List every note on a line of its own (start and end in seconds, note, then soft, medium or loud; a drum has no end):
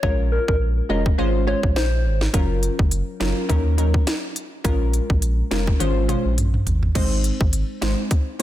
0.03 0.38 A#1 loud
0.03 0.83 G#3 medium
0.03 0.83 C#4 medium
0.03 0.84 F4 medium
0.03 0.84 A#4 loud
0.03 0.15 C#5 loud
0.03 kick loud
0.32 0.44 A#4 medium
0.48 0.81 A#1 medium
0.48 0.58 A#4 medium
0.48 kick medium
0.89 1.12 F1 medium
0.89 1.16 G#3 medium
0.89 1.16 C#4 medium
0.89 1.16 F4 medium
0.89 1.17 A#4 medium
0.89 1.02 D#5 medium
1.06 kick medium
1.18 1.54 G#1 loud
1.18 1.45 G#3 loud
1.18 1.45 C#4 medium
1.18 1.45 F4 medium
1.18 1.45 C5 loud
1.47 1.66 G#3 medium
1.47 1.66 C#4 medium
1.47 1.66 F4 medium
1.47 1.66 C5 medium
1.47 1.59 C#5 medium
1.63 2.07 A#1 medium
1.63 kick medium
1.76 2.19 C5 medium
1.76 snare loud
2.05 2.28 G#1 medium
2.21 snare medium
2.33 2.69 F#1 medium
2.33 3.14 F#3 medium
2.33 3.14 C#4 medium
2.33 3.14 F4 medium
2.33 3.14 A#4 loud
2.33 kick loud
2.33 closed hi-hat medium
2.63 closed hi-hat soft
2.79 3.02 F#1 loud
2.79 kick loud
2.91 closed hi-hat medium
3.20 3.33 F#1 medium
3.20 3.47 F#3 medium
3.20 3.47 C#4 medium
3.20 3.47 F4 medium
3.20 3.47 A#4 medium
3.20 snare loud
3.20 closed hi-hat medium
3.49 3.95 D#2 loud
3.49 3.76 F#3 loud
3.49 3.76 C#4 medium
3.49 3.76 D#4 medium
3.49 3.76 A#4 loud
3.49 kick medium
3.49 closed hi-hat medium
3.78 3.97 F#3 medium
3.78 3.97 C#4 medium
3.78 3.97 D#4 medium
3.78 3.97 A#4 medium
3.78 closed hi-hat medium
3.94 kick medium
4.07 snare loud
4.07 closed hi-hat medium
4.36 closed hi-hat medium
4.64 5.00 A#1 loud
4.64 5.45 G#3 medium
4.64 5.45 C#4 medium
4.64 5.45 F4 medium
4.64 5.45 A#4 loud
4.64 kick loud
4.64 closed hi-hat medium
4.93 closed hi-hat soft
5.10 5.42 A#1 medium
5.10 kick medium
5.22 closed hi-hat medium
5.51 5.74 F1 medium
5.51 5.78 G#3 medium
5.51 5.78 C#4 medium
5.51 5.78 F4 medium
5.51 5.78 A#4 medium
5.51 snare loud
5.51 closed hi-hat medium
5.67 kick medium
5.80 6.15 G#1 loud
5.80 6.07 G#3 medium
5.80 6.07 C#4 medium
5.80 6.07 F4 medium
5.80 6.07 C5 loud
5.80 closed hi-hat medium
5.80 high tom medium
6.08 6.27 G#3 medium
6.08 6.28 C#4 medium
6.08 6.28 F4 medium
6.08 6.28 C5 medium
6.08 closed hi-hat medium
6.08 mid tom medium
6.25 6.58 A#1 medium
6.38 closed hi-hat medium
6.38 mid tom medium
6.54 mid tom medium
6.66 6.89 G#1 medium
6.66 closed hi-hat soft
6.66 floor tom medium
6.83 floor tom medium
6.95 7.31 G#1 loud
6.95 7.76 G#3 loud
6.95 7.76 C4 medium
6.95 7.76 D#4 medium
6.95 7.76 C5 loud
6.95 kick loud
6.95 closed hi-hat medium
6.95 crash medium
7.24 closed hi-hat soft
7.41 7.63 G#1 loud
7.41 kick loud
7.53 closed hi-hat medium
7.82 7.95 G#1 loud
7.82 8.09 G#3 medium
7.82 8.09 C4 medium
7.82 8.09 D#4 medium
7.82 8.09 C5 medium
7.82 snare loud
7.82 closed hi-hat medium
8.11 kick loud
8.11 closed hi-hat medium